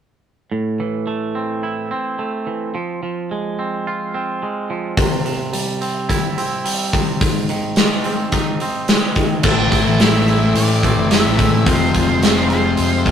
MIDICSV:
0, 0, Header, 1, 6, 480
1, 0, Start_track
1, 0, Tempo, 558140
1, 435, Time_signature, 4, 2, 24, 8
1, 11277, End_track
2, 0, Start_track
2, 0, Title_t, "Lead electric guitar"
2, 0, Program_c, 0, 29
2, 8119, Note_on_c, 0, 81, 80
2, 8603, Note_on_c, 0, 76, 88
2, 8613, Note_off_c, 0, 81, 0
2, 9047, Note_off_c, 0, 76, 0
2, 9076, Note_on_c, 0, 74, 75
2, 9546, Note_off_c, 0, 74, 0
2, 9549, Note_on_c, 0, 76, 61
2, 10044, Note_on_c, 0, 72, 77
2, 10047, Note_off_c, 0, 76, 0
2, 10731, Note_off_c, 0, 72, 0
2, 10741, Note_on_c, 0, 72, 83
2, 11277, Note_off_c, 0, 72, 0
2, 11277, End_track
3, 0, Start_track
3, 0, Title_t, "Clean electric guitar"
3, 0, Program_c, 1, 27
3, 443, Note_on_c, 1, 45, 55
3, 687, Note_on_c, 1, 52, 57
3, 920, Note_on_c, 1, 57, 58
3, 1162, Note_on_c, 1, 60, 54
3, 1403, Note_on_c, 1, 64, 60
3, 1639, Note_off_c, 1, 60, 0
3, 1641, Note_off_c, 1, 45, 0
3, 1642, Note_on_c, 1, 60, 62
3, 1872, Note_off_c, 1, 57, 0
3, 1882, Note_on_c, 1, 57, 54
3, 1883, Note_off_c, 1, 52, 0
3, 2121, Note_on_c, 1, 52, 47
3, 2358, Note_off_c, 1, 52, 0
3, 2360, Note_off_c, 1, 57, 0
3, 2361, Note_off_c, 1, 64, 0
3, 2361, Note_on_c, 1, 53, 60
3, 2593, Note_off_c, 1, 53, 0
3, 2603, Note_on_c, 1, 53, 57
3, 2849, Note_on_c, 1, 56, 62
3, 3082, Note_off_c, 1, 60, 0
3, 3086, Note_on_c, 1, 60, 54
3, 3330, Note_on_c, 1, 65, 66
3, 3560, Note_off_c, 1, 60, 0
3, 3564, Note_on_c, 1, 60, 59
3, 3797, Note_off_c, 1, 56, 0
3, 3801, Note_off_c, 1, 53, 0
3, 3807, Note_on_c, 1, 56, 53
3, 4043, Note_on_c, 1, 53, 53
3, 4279, Note_off_c, 1, 53, 0
3, 4282, Note_on_c, 1, 48, 59
3, 4283, Note_off_c, 1, 56, 0
3, 4285, Note_off_c, 1, 65, 0
3, 4507, Note_off_c, 1, 48, 0
3, 4518, Note_on_c, 1, 48, 65
3, 4755, Note_on_c, 1, 55, 51
3, 4996, Note_off_c, 1, 60, 0
3, 4999, Note_on_c, 1, 60, 52
3, 5236, Note_on_c, 1, 64, 62
3, 5481, Note_off_c, 1, 60, 0
3, 5484, Note_on_c, 1, 60, 69
3, 5706, Note_off_c, 1, 55, 0
3, 5716, Note_on_c, 1, 55, 61
3, 5719, Note_off_c, 1, 48, 0
3, 5959, Note_on_c, 1, 48, 54
3, 6198, Note_off_c, 1, 55, 0
3, 6198, Note_off_c, 1, 64, 0
3, 6199, Note_off_c, 1, 48, 0
3, 6205, Note_on_c, 1, 44, 57
3, 6447, Note_on_c, 1, 51, 66
3, 6680, Note_on_c, 1, 56, 58
3, 6920, Note_off_c, 1, 60, 0
3, 6924, Note_on_c, 1, 60, 58
3, 7172, Note_on_c, 1, 63, 68
3, 7400, Note_off_c, 1, 60, 0
3, 7402, Note_off_c, 1, 44, 0
3, 7410, Note_on_c, 1, 60, 66
3, 7638, Note_off_c, 1, 56, 0
3, 7643, Note_off_c, 1, 51, 0
3, 7649, Note_on_c, 1, 56, 53
3, 7898, Note_on_c, 1, 51, 58
3, 8124, Note_off_c, 1, 56, 0
3, 8125, Note_off_c, 1, 60, 0
3, 8125, Note_off_c, 1, 63, 0
3, 8129, Note_off_c, 1, 51, 0
3, 8132, Note_on_c, 1, 45, 80
3, 8137, Note_on_c, 1, 52, 75
3, 8142, Note_on_c, 1, 57, 78
3, 8147, Note_on_c, 1, 60, 85
3, 8149, Note_on_c, 1, 64, 79
3, 8354, Note_off_c, 1, 52, 0
3, 8363, Note_off_c, 1, 57, 0
3, 8364, Note_on_c, 1, 52, 66
3, 8373, Note_on_c, 1, 57, 79
3, 8374, Note_off_c, 1, 64, 0
3, 8375, Note_off_c, 1, 60, 0
3, 8379, Note_on_c, 1, 60, 76
3, 8384, Note_on_c, 1, 64, 70
3, 8473, Note_off_c, 1, 64, 0
3, 8483, Note_on_c, 1, 64, 67
3, 8488, Note_off_c, 1, 60, 0
3, 8491, Note_on_c, 1, 60, 60
3, 8495, Note_off_c, 1, 57, 0
3, 8505, Note_on_c, 1, 57, 54
3, 8591, Note_off_c, 1, 45, 0
3, 8596, Note_off_c, 1, 52, 0
3, 8601, Note_off_c, 1, 57, 0
3, 8601, Note_on_c, 1, 45, 73
3, 8606, Note_on_c, 1, 52, 81
3, 8611, Note_off_c, 1, 64, 0
3, 8612, Note_off_c, 1, 60, 0
3, 8612, Note_on_c, 1, 57, 79
3, 8616, Note_on_c, 1, 60, 82
3, 8621, Note_on_c, 1, 64, 96
3, 8828, Note_off_c, 1, 52, 0
3, 8838, Note_off_c, 1, 57, 0
3, 8838, Note_on_c, 1, 52, 59
3, 8848, Note_on_c, 1, 57, 59
3, 8850, Note_off_c, 1, 64, 0
3, 8852, Note_off_c, 1, 60, 0
3, 8855, Note_on_c, 1, 60, 63
3, 8861, Note_on_c, 1, 64, 62
3, 8951, Note_off_c, 1, 64, 0
3, 8962, Note_on_c, 1, 64, 64
3, 8969, Note_off_c, 1, 60, 0
3, 8973, Note_off_c, 1, 57, 0
3, 8973, Note_on_c, 1, 60, 57
3, 8984, Note_on_c, 1, 57, 46
3, 9079, Note_off_c, 1, 45, 0
3, 9198, Note_off_c, 1, 52, 0
3, 9320, Note_off_c, 1, 57, 0
3, 9323, Note_on_c, 1, 52, 71
3, 9330, Note_off_c, 1, 64, 0
3, 9330, Note_on_c, 1, 57, 72
3, 9334, Note_off_c, 1, 60, 0
3, 9338, Note_on_c, 1, 60, 83
3, 9341, Note_on_c, 1, 64, 72
3, 9431, Note_off_c, 1, 64, 0
3, 9441, Note_on_c, 1, 64, 64
3, 9450, Note_off_c, 1, 60, 0
3, 9453, Note_off_c, 1, 57, 0
3, 9453, Note_on_c, 1, 60, 64
3, 9463, Note_on_c, 1, 57, 52
3, 9543, Note_off_c, 1, 52, 0
3, 9547, Note_on_c, 1, 45, 77
3, 9548, Note_off_c, 1, 57, 0
3, 9553, Note_on_c, 1, 52, 73
3, 9558, Note_off_c, 1, 60, 0
3, 9558, Note_on_c, 1, 57, 81
3, 9560, Note_off_c, 1, 64, 0
3, 9562, Note_on_c, 1, 60, 74
3, 9571, Note_on_c, 1, 64, 89
3, 9789, Note_off_c, 1, 52, 0
3, 9796, Note_off_c, 1, 57, 0
3, 9799, Note_on_c, 1, 52, 56
3, 9807, Note_off_c, 1, 64, 0
3, 9807, Note_on_c, 1, 57, 56
3, 9808, Note_off_c, 1, 60, 0
3, 9811, Note_on_c, 1, 60, 66
3, 9818, Note_on_c, 1, 64, 60
3, 9903, Note_off_c, 1, 64, 0
3, 9913, Note_on_c, 1, 64, 54
3, 9924, Note_off_c, 1, 57, 0
3, 9924, Note_off_c, 1, 60, 0
3, 9927, Note_on_c, 1, 60, 57
3, 9934, Note_on_c, 1, 57, 52
3, 10018, Note_off_c, 1, 45, 0
3, 10021, Note_off_c, 1, 64, 0
3, 10023, Note_off_c, 1, 52, 0
3, 10029, Note_on_c, 1, 53, 83
3, 10031, Note_off_c, 1, 57, 0
3, 10039, Note_on_c, 1, 56, 78
3, 10040, Note_off_c, 1, 60, 0
3, 10044, Note_on_c, 1, 60, 85
3, 10049, Note_on_c, 1, 65, 83
3, 10269, Note_off_c, 1, 53, 0
3, 10276, Note_off_c, 1, 56, 0
3, 10280, Note_on_c, 1, 53, 58
3, 10286, Note_on_c, 1, 56, 74
3, 10289, Note_off_c, 1, 65, 0
3, 10290, Note_off_c, 1, 60, 0
3, 10293, Note_on_c, 1, 60, 70
3, 10299, Note_on_c, 1, 65, 76
3, 10387, Note_off_c, 1, 65, 0
3, 10397, Note_on_c, 1, 65, 63
3, 10405, Note_off_c, 1, 60, 0
3, 10408, Note_off_c, 1, 56, 0
3, 10408, Note_on_c, 1, 60, 56
3, 10419, Note_on_c, 1, 56, 59
3, 10500, Note_off_c, 1, 53, 0
3, 10511, Note_off_c, 1, 56, 0
3, 10511, Note_on_c, 1, 53, 75
3, 10521, Note_off_c, 1, 65, 0
3, 10521, Note_on_c, 1, 56, 88
3, 10523, Note_off_c, 1, 60, 0
3, 10526, Note_on_c, 1, 60, 78
3, 10532, Note_on_c, 1, 65, 87
3, 10749, Note_off_c, 1, 53, 0
3, 10757, Note_off_c, 1, 56, 0
3, 10759, Note_on_c, 1, 53, 55
3, 10767, Note_on_c, 1, 56, 66
3, 10770, Note_off_c, 1, 65, 0
3, 10771, Note_off_c, 1, 60, 0
3, 10774, Note_on_c, 1, 60, 67
3, 10780, Note_on_c, 1, 65, 73
3, 10864, Note_off_c, 1, 65, 0
3, 10875, Note_on_c, 1, 65, 62
3, 10886, Note_off_c, 1, 56, 0
3, 10886, Note_off_c, 1, 60, 0
3, 10889, Note_on_c, 1, 60, 50
3, 10896, Note_on_c, 1, 56, 50
3, 11117, Note_off_c, 1, 53, 0
3, 11232, Note_off_c, 1, 56, 0
3, 11235, Note_on_c, 1, 53, 72
3, 11243, Note_on_c, 1, 56, 73
3, 11247, Note_off_c, 1, 65, 0
3, 11248, Note_off_c, 1, 60, 0
3, 11251, Note_on_c, 1, 60, 77
3, 11277, Note_off_c, 1, 53, 0
3, 11277, Note_off_c, 1, 56, 0
3, 11277, Note_off_c, 1, 60, 0
3, 11277, End_track
4, 0, Start_track
4, 0, Title_t, "Distorted electric guitar"
4, 0, Program_c, 2, 30
4, 9803, Note_on_c, 2, 45, 60
4, 10025, Note_off_c, 2, 45, 0
4, 10027, Note_on_c, 2, 41, 79
4, 10033, Note_on_c, 2, 48, 85
4, 11277, Note_off_c, 2, 41, 0
4, 11277, Note_off_c, 2, 48, 0
4, 11277, End_track
5, 0, Start_track
5, 0, Title_t, "Picked electric bass"
5, 0, Program_c, 3, 34
5, 8119, Note_on_c, 3, 33, 93
5, 8454, Note_off_c, 3, 33, 0
5, 8481, Note_on_c, 3, 33, 74
5, 9045, Note_off_c, 3, 33, 0
5, 9072, Note_on_c, 3, 45, 91
5, 9410, Note_off_c, 3, 45, 0
5, 9433, Note_on_c, 3, 30, 70
5, 9659, Note_off_c, 3, 30, 0
5, 9677, Note_on_c, 3, 33, 73
5, 9901, Note_off_c, 3, 33, 0
5, 9918, Note_on_c, 3, 33, 77
5, 10025, Note_off_c, 3, 33, 0
5, 10030, Note_on_c, 3, 29, 83
5, 10368, Note_off_c, 3, 29, 0
5, 10402, Note_on_c, 3, 29, 69
5, 10964, Note_off_c, 3, 29, 0
5, 10999, Note_on_c, 3, 41, 89
5, 11277, Note_off_c, 3, 41, 0
5, 11277, End_track
6, 0, Start_track
6, 0, Title_t, "Drums"
6, 4278, Note_on_c, 9, 36, 101
6, 4279, Note_on_c, 9, 46, 57
6, 4364, Note_off_c, 9, 36, 0
6, 4365, Note_off_c, 9, 46, 0
6, 4522, Note_on_c, 9, 46, 36
6, 4608, Note_off_c, 9, 46, 0
6, 4760, Note_on_c, 9, 46, 57
6, 4846, Note_off_c, 9, 46, 0
6, 5003, Note_on_c, 9, 46, 42
6, 5089, Note_off_c, 9, 46, 0
6, 5241, Note_on_c, 9, 36, 68
6, 5247, Note_on_c, 9, 46, 55
6, 5327, Note_off_c, 9, 36, 0
6, 5333, Note_off_c, 9, 46, 0
6, 5486, Note_on_c, 9, 46, 39
6, 5572, Note_off_c, 9, 46, 0
6, 5724, Note_on_c, 9, 46, 63
6, 5810, Note_off_c, 9, 46, 0
6, 5963, Note_on_c, 9, 36, 81
6, 5964, Note_on_c, 9, 46, 47
6, 6049, Note_off_c, 9, 36, 0
6, 6050, Note_off_c, 9, 46, 0
6, 6202, Note_on_c, 9, 36, 92
6, 6202, Note_on_c, 9, 46, 60
6, 6288, Note_off_c, 9, 36, 0
6, 6288, Note_off_c, 9, 46, 0
6, 6442, Note_on_c, 9, 46, 42
6, 6528, Note_off_c, 9, 46, 0
6, 6675, Note_on_c, 9, 46, 55
6, 6682, Note_on_c, 9, 38, 88
6, 6761, Note_off_c, 9, 46, 0
6, 6768, Note_off_c, 9, 38, 0
6, 6915, Note_on_c, 9, 46, 37
6, 7001, Note_off_c, 9, 46, 0
6, 7156, Note_on_c, 9, 46, 49
6, 7159, Note_on_c, 9, 36, 68
6, 7242, Note_off_c, 9, 46, 0
6, 7245, Note_off_c, 9, 36, 0
6, 7398, Note_on_c, 9, 46, 38
6, 7484, Note_off_c, 9, 46, 0
6, 7637, Note_on_c, 9, 46, 58
6, 7644, Note_on_c, 9, 38, 99
6, 7723, Note_off_c, 9, 46, 0
6, 7730, Note_off_c, 9, 38, 0
6, 7874, Note_on_c, 9, 46, 45
6, 7879, Note_on_c, 9, 36, 75
6, 7960, Note_off_c, 9, 46, 0
6, 7965, Note_off_c, 9, 36, 0
6, 8112, Note_on_c, 9, 49, 82
6, 8118, Note_on_c, 9, 36, 102
6, 8198, Note_off_c, 9, 49, 0
6, 8204, Note_off_c, 9, 36, 0
6, 8359, Note_on_c, 9, 36, 73
6, 8359, Note_on_c, 9, 46, 45
6, 8445, Note_off_c, 9, 36, 0
6, 8445, Note_off_c, 9, 46, 0
6, 8598, Note_on_c, 9, 46, 62
6, 8605, Note_on_c, 9, 38, 96
6, 8684, Note_off_c, 9, 46, 0
6, 8691, Note_off_c, 9, 38, 0
6, 8840, Note_on_c, 9, 46, 39
6, 8926, Note_off_c, 9, 46, 0
6, 9078, Note_on_c, 9, 46, 63
6, 9164, Note_off_c, 9, 46, 0
6, 9316, Note_on_c, 9, 36, 65
6, 9321, Note_on_c, 9, 46, 41
6, 9402, Note_off_c, 9, 36, 0
6, 9407, Note_off_c, 9, 46, 0
6, 9554, Note_on_c, 9, 46, 73
6, 9561, Note_on_c, 9, 38, 94
6, 9640, Note_off_c, 9, 46, 0
6, 9647, Note_off_c, 9, 38, 0
6, 9794, Note_on_c, 9, 36, 85
6, 9794, Note_on_c, 9, 46, 49
6, 9880, Note_off_c, 9, 36, 0
6, 9880, Note_off_c, 9, 46, 0
6, 10031, Note_on_c, 9, 46, 62
6, 10032, Note_on_c, 9, 36, 105
6, 10117, Note_off_c, 9, 46, 0
6, 10118, Note_off_c, 9, 36, 0
6, 10273, Note_on_c, 9, 36, 67
6, 10275, Note_on_c, 9, 46, 43
6, 10359, Note_off_c, 9, 36, 0
6, 10361, Note_off_c, 9, 46, 0
6, 10514, Note_on_c, 9, 46, 62
6, 10521, Note_on_c, 9, 38, 89
6, 10600, Note_off_c, 9, 46, 0
6, 10607, Note_off_c, 9, 38, 0
6, 10751, Note_on_c, 9, 46, 41
6, 10837, Note_off_c, 9, 46, 0
6, 10986, Note_on_c, 9, 46, 54
6, 11072, Note_off_c, 9, 46, 0
6, 11230, Note_on_c, 9, 36, 70
6, 11231, Note_on_c, 9, 46, 38
6, 11277, Note_off_c, 9, 36, 0
6, 11277, Note_off_c, 9, 46, 0
6, 11277, End_track
0, 0, End_of_file